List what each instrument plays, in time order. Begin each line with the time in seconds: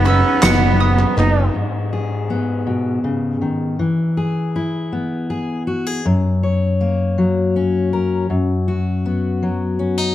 Already playing: fingered electric bass F#1, trumpet B3, mandolin D#6
0.05 twelve-string acoustic guitar F#3 B3 D#4 B4, cello C#4, mandolin E6, clap, ride
0.42 fingered electric bass F#1, twelve-string acoustic guitar F#3 B3 D#4 B4, cello B3, mandolin F#5, snare, clap, ride
0.80 mandolin D#6, ride
0.99 clap
1.17 fingered electric bass F#1, twelve-string acoustic guitar B3 D#4 B4, trumpet D#4, clap, ride
1.55 steel-string acoustic guitar G#2
1.93 steel-string acoustic guitar G#4
2.30 steel-string acoustic guitar B3
2.67 steel-string acoustic guitar B2
3.04 steel-string acoustic guitar C#3
3.41 steel-string acoustic guitar D#3
3.79 steel-string acoustic guitar E3
4.17 steel-string acoustic guitar G#4
4.56 steel-string acoustic guitar E4
4.92 steel-string acoustic guitar B3
5.30 steel-string acoustic guitar G#4
5.67 steel-string acoustic guitar F#4
5.87 steel-string acoustic guitar G#4
6.05 steel-string acoustic guitar F#2
6.43 steel-string acoustic guitar C#5
6.81 steel-string acoustic guitar A#3
7.18 steel-string acoustic guitar F#3
7.56 steel-string acoustic guitar C#4
7.93 steel-string acoustic guitar A#4
8.30 steel-string acoustic guitar F#2
8.68 steel-string acoustic guitar F#4
9.05 steel-string acoustic guitar B3
9.43 steel-string acoustic guitar F#3
9.79 steel-string acoustic guitar C#4
9.98 steel-string acoustic guitar D#4